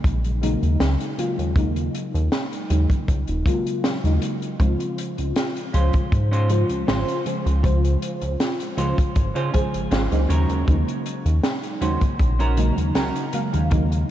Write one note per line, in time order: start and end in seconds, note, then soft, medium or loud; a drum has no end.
0.00 0.38 C#3 medium
0.00 0.38 F#3 medium
0.00 0.38 G#3 medium
0.00 0.38 A#3 medium
0.00 0.39 D#4 medium
0.04 0.56 A#1 loud
0.04 kick loud
0.04 closed hi-hat medium
0.24 closed hi-hat soft
0.42 1.14 C#3 loud
0.42 1.14 F#3 medium
0.42 1.14 G#3 medium
0.42 1.14 A#3 medium
0.42 1.15 D#4 loud
0.42 closed hi-hat loud
0.62 0.77 D#2 medium
0.62 closed hi-hat medium
0.80 0.97 C#2 medium
0.80 snare loud
0.80 closed hi-hat medium
1.00 closed hi-hat medium
1.18 1.52 C#3 medium
1.18 1.52 F#3 medium
1.18 1.52 G#3 medium
1.18 1.52 A#3 medium
1.18 1.53 F4 medium
1.18 closed hi-hat medium
1.38 1.89 D#2 loud
1.38 closed hi-hat soft
1.55 2.65 C#3 medium
1.55 2.66 F#3 medium
1.55 2.66 G#3 medium
1.55 2.66 A#3 medium
1.55 2.67 D#4 medium
1.55 kick loud
1.55 closed hi-hat medium
1.76 closed hi-hat soft
1.95 closed hi-hat medium
2.14 2.29 D#2 loud
2.14 closed hi-hat medium
2.32 snare loud
2.32 closed hi-hat medium
2.53 closed hi-hat medium
2.70 2.87 D#2 loud
2.70 3.42 C#3 medium
2.70 3.42 F#3 medium
2.70 3.42 G#3 medium
2.70 3.42 A#3 medium
2.70 3.42 D#4 medium
2.70 closed hi-hat medium
2.90 kick loud
2.90 closed hi-hat medium
3.08 3.25 C#2 medium
3.08 kick loud
3.08 closed hi-hat medium
3.27 3.43 D#1 medium
3.27 closed hi-hat medium
3.46 3.99 C#3 medium
3.46 3.99 F#3 medium
3.46 4.00 G#3 medium
3.46 4.00 A#3 medium
3.46 4.00 F4 loud
3.46 kick loud
3.46 closed hi-hat medium
3.67 closed hi-hat medium
3.84 snare loud
3.84 closed hi-hat medium
4.04 4.19 D#2 medium
4.04 4.56 C#3 medium
4.04 4.56 F#3 medium
4.04 4.56 G#3 medium
4.04 4.56 A#3 medium
4.04 4.56 D#4 medium
4.04 closed hi-hat medium
4.22 closed hi-hat loud
4.42 closed hi-hat medium
4.59 4.76 C#2 medium
4.59 5.69 C#3 medium
4.59 5.70 F3 medium
4.59 5.70 G#3 medium
4.59 5.70 C4 medium
4.59 5.71 F4 medium
4.59 muted clean electric guitar stroke loud
4.59 kick loud
4.59 closed hi-hat medium
4.80 muted clean electric guitar stroke soft
4.80 closed hi-hat medium
4.98 closed hi-hat loud
5.18 5.33 C#2 loud
5.18 closed hi-hat medium
5.36 snare loud
5.36 closed hi-hat medium
5.56 closed hi-hat soft
5.73 5.90 C#2 loud
5.73 6.45 C#3 medium
5.73 6.46 F3 medium
5.73 6.46 G#3 medium
5.73 5.94 C#4 medium
5.73 5.94 F4 medium
5.73 6.46 F4 medium
5.73 5.94 C5 medium
5.73 6.46 C5 medium
5.73 closed hi-hat medium
5.93 kick loud
5.93 closed hi-hat medium
6.11 6.64 G#2 loud
6.11 muted clean electric guitar stroke soft
6.11 kick loud
6.11 closed hi-hat medium
6.31 6.50 C#4 loud
6.31 6.50 F4 loud
6.31 6.50 C5 loud
6.31 closed hi-hat medium
6.49 7.21 C#3 loud
6.49 7.22 F3 medium
6.49 7.22 G#3 medium
6.49 7.22 F4 loud
6.49 7.22 C5 medium
6.49 closed hi-hat medium
6.69 6.85 C#2 medium
6.69 muted clean electric guitar stroke soft
6.69 closed hi-hat medium
6.87 7.04 G#1 medium
6.87 7.17 C#4 medium
6.87 7.17 F4 medium
6.87 7.17 C5 medium
6.87 snare loud
6.87 closed hi-hat medium
7.08 closed hi-hat medium
7.25 7.59 C#3 medium
7.25 7.59 F3 medium
7.25 7.60 G#3 medium
7.25 7.60 G#4 medium
7.25 7.60 C5 medium
7.25 closed hi-hat medium
7.45 7.97 C#2 loud
7.45 muted clean electric guitar stroke medium
7.45 closed hi-hat medium
7.62 8.73 C#3 medium
7.62 8.73 F3 medium
7.62 8.74 G#3 medium
7.62 8.74 F4 medium
7.62 8.74 C5 medium
7.62 muted clean electric guitar stroke loud
7.62 kick loud
7.62 closed hi-hat medium
7.83 muted clean electric guitar stroke soft
7.83 closed hi-hat medium
8.02 closed hi-hat loud
8.21 8.36 C#2 loud
8.21 closed hi-hat medium
8.40 snare loud
8.40 closed hi-hat medium
8.60 closed hi-hat medium
8.77 8.94 C#2 loud
8.77 9.49 C#3 medium
8.77 9.49 F3 medium
8.77 9.49 G#3 medium
8.77 8.98 C#4 medium
8.77 8.98 F4 medium
8.77 9.50 F4 medium
8.77 9.50 C5 medium
8.77 8.98 C5 medium
8.77 closed hi-hat medium
8.98 kick loud
8.98 closed hi-hat medium
9.15 9.32 G#1 medium
9.15 muted clean electric guitar stroke soft
9.15 kick loud
9.15 closed hi-hat medium
9.35 9.50 C#3 medium
9.35 9.53 C#4 loud
9.35 9.54 F4 loud
9.35 9.53 C5 loud
9.35 closed hi-hat soft
9.53 10.07 C#3 medium
9.53 10.07 F3 medium
9.53 10.07 G#3 medium
9.53 10.08 G#4 loud
9.53 10.07 C5 medium
9.53 9.89 G#5 medium
9.53 kick medium
9.53 closed hi-hat medium
9.73 9.88 G#1 soft
9.73 muted clean electric guitar stroke soft
9.73 closed hi-hat medium
9.91 10.08 G#1 medium
9.91 10.20 C#4 medium
9.91 10.21 F4 medium
9.91 10.21 C5 medium
9.91 10.27 F5 medium
9.91 snare loud
9.91 closed hi-hat medium
10.11 10.26 C#2 loud
10.11 10.63 C#3 medium
10.11 10.63 F#3 medium
10.11 10.63 G#3 medium
10.11 10.64 A#3 medium
10.11 10.64 D#4 loud
10.11 closed hi-hat medium
10.29 10.46 D#2 medium
10.29 10.75 C#4 loud
10.29 10.76 F#4 medium
10.29 10.76 A#4 loud
10.29 10.65 C#5 medium
10.29 closed hi-hat loud
10.49 10.64 D#2 medium
10.49 closed hi-hat medium
10.66 10.84 D#2 loud
10.66 11.77 C#3 medium
10.66 11.77 F#3 medium
10.66 11.77 G#3 medium
10.66 11.78 A#3 medium
10.66 11.78 D#4 medium
10.66 kick loud
10.66 closed hi-hat medium
10.87 muted clean electric guitar stroke soft
10.87 closed hi-hat medium
11.06 closed hi-hat medium
11.25 11.40 D#2 loud
11.25 closed hi-hat medium
11.43 snare loud
11.43 closed hi-hat medium
11.63 closed hi-hat medium
11.81 11.98 D#2 loud
11.81 12.53 C#3 medium
11.81 12.53 F#3 medium
11.81 12.53 G#3 medium
11.81 12.53 A#3 medium
11.81 12.01 C#4 medium
11.81 12.54 D#4 medium
11.81 12.02 F#4 medium
11.81 12.02 C5 medium
11.81 closed hi-hat loud
12.01 kick medium
12.01 closed hi-hat medium
12.19 12.72 A#1 loud
12.19 muted clean electric guitar stroke soft
12.19 kick loud
12.19 closed hi-hat medium
12.39 12.57 C#4 loud
12.39 12.58 F#4 loud
12.39 12.58 A#4 loud
12.39 closed hi-hat medium
12.57 13.29 C#3 loud
12.57 13.29 F#3 medium
12.57 13.29 G#3 medium
12.57 13.30 A#3 medium
12.57 13.30 D#4 loud
12.57 closed hi-hat loud
12.77 12.92 D#2 medium
12.77 muted clean electric guitar stroke soft
12.77 closed hi-hat medium
12.95 13.12 C#2 medium
12.95 13.24 C#4 medium
12.95 13.25 F#4 medium
12.95 13.25 A#4 medium
12.95 snare loud
12.95 closed hi-hat medium
13.16 closed hi-hat medium
13.33 13.67 C#3 medium
13.33 13.67 F#3 medium
13.33 13.67 G#3 medium
13.33 13.67 A#3 medium
13.33 13.68 F5 medium
13.33 closed hi-hat loud
13.53 14.04 D#2 loud
13.53 muted clean electric guitar stroke medium
13.53 closed hi-hat medium
13.70 14.11 C#3 medium
13.70 14.11 F#3 medium
13.70 14.11 G#3 medium
13.70 14.11 A#3 medium
13.70 14.11 D#4 medium
13.70 muted clean electric guitar stroke loud
13.70 kick loud
13.70 closed hi-hat medium
13.91 muted clean electric guitar stroke soft
13.91 closed hi-hat medium